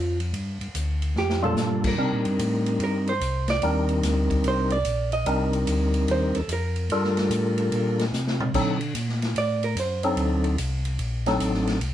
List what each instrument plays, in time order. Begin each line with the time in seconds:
Already playing: tonewheel organ F2, hollow-body jazz guitar F3 F4
0.20 ride
0.33 tonewheel organ G2, ride
0.61 tonewheel organ G2, ride
0.74 tonewheel organ D2, hi-hat pedal, ride
1.02 ride
1.15 tonewheel organ F2, hollow-body jazz guitar G4, snare
1.30 snare
1.42 tonewheel organ G3 A#3 D4 F4 A4, hollow-body jazz guitar A4, mid tom
1.56 tonewheel organ G2, snare, hi-hat pedal
1.84 hollow-body jazz guitar A#4, kick, crash
1.98 tonewheel organ C3 G3 C4 D4 D#4 A#4
2.12 tonewheel organ A#2
2.25 tonewheel organ G2, ride
2.39 tonewheel organ A2, hi-hat pedal, ride
2.66 ride
2.79 tonewheel organ G2, ride
2.84 hollow-body jazz guitar A#4
3.07 hollow-body jazz guitar C5, ride
3.20 tonewheel organ C2, hi-hat pedal, ride
3.48 hollow-body jazz guitar D5, snare, ride
3.62 tonewheel organ D#2 G3 C4 D4 D#4 A#4, ride
3.89 ride
4.02 tonewheel organ D2, snare, hi-hat pedal, ride
4.30 kick, ride
4.44 tonewheel organ C2, ride
4.48 hollow-body jazz guitar C5
4.70 hollow-body jazz guitar D5, ride
4.85 tonewheel organ A#1, hi-hat pedal, ride
5.12 hollow-body jazz guitar D#5, ride
5.25 tonewheel organ C2 G3 C4 D4 D#4 A#4, ride
5.53 ride
5.67 tonewheel organ D2, hi-hat pedal, ride
5.94 ride
6.08 tonewheel organ D#2, hollow-body jazz guitar C5, ride
6.35 tonewheel organ D#2, hollow-body jazz guitar A4, ride
6.48 tonewheel organ F2, hi-hat pedal, ride
6.53 hollow-body jazz guitar A#4
6.76 ride
6.89 tonewheel organ G2 G3 D4 F4 A4 A#4, ride
7.04 snare
7.17 snare, ride
7.30 tonewheel organ A2, hi-hat pedal, ride
7.58 ride
7.71 tonewheel organ A#2, ride
7.99 snare, ride
8.13 tonewheel organ C3, snare, hi-hat pedal
8.27 snare
8.40 mid tom
8.54 tonewheel organ D3 F#3 C4 D4 D#4 A4, kick, crash
8.81 ride
8.94 tonewheel organ A#2, hi-hat pedal, ride
9.09 snare
9.22 snare, ride
9.35 tonewheel organ A2, hollow-body jazz guitar D5, ride
9.63 hollow-body jazz guitar A#4, ride
9.76 tonewheel organ F#2, hi-hat pedal, ride
9.80 hollow-body jazz guitar C5
10.03 tonewheel organ F#3 C4 D4 D#4 A4, ride
10.16 tonewheel organ D2, ride
10.44 ride
10.58 tonewheel organ C2, hi-hat pedal, ride
10.85 ride
10.99 tonewheel organ A#1, ride
11.26 tonewheel organ F#3 C4 D4 D#4 A4, snare, ride
11.40 tonewheel organ A1, hi-hat pedal, ride
11.54 snare
11.67 snare, ride
11.81 tonewheel organ C2, ride